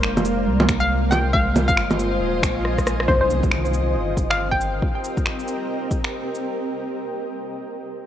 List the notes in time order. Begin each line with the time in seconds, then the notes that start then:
Already playing: F1 G#3 A#3 F4 A#4 C5 F5
0.03 finger snap
0.17 low bongo, shaker
0.25 open hi-hat, shaker
0.35 D#5
0.47 C2 G3
0.60 low bongo
0.65 A#3, finger snap, kick, open hi-hat, shaker
0.80 F5
0.95 G#5
1.11 G5, open hi-hat, low bongo, shaker
1.33 G#3 F5, kick
1.56 open hi-hat, low bongo, shaker
1.68 G1 F5, kick, shaker
1.77 finger snap
1.91 low bongo, shaker
1.99 open hi-hat, shaker
2.21 D#1
2.43 A#1, finger snap, kick, open hi-hat, shaker
2.65 cross-stick
2.78 kick, cross-stick, shaker
2.87 cross-stick, open hi-hat, shaker
3.00 cross-stick
3.08 C2 C4 C5, kick, impact
3.21 C5
3.30 shaker
3.43 kick, shaker
3.52 D#3, finger snap
3.58 G4
3.65 A#4, shaker
3.74 shaker
3.95 G1
4.17 kick, shaker
4.30 F5, finger snap
4.51 G5, kick
4.61 shaker
4.82 kick
5.04 shaker
5.17 kick, shaker
5.26 finger snap
5.39 shaker
5.48 shaker
5.91 kick, shaker
6.04 finger snap
6.35 shaker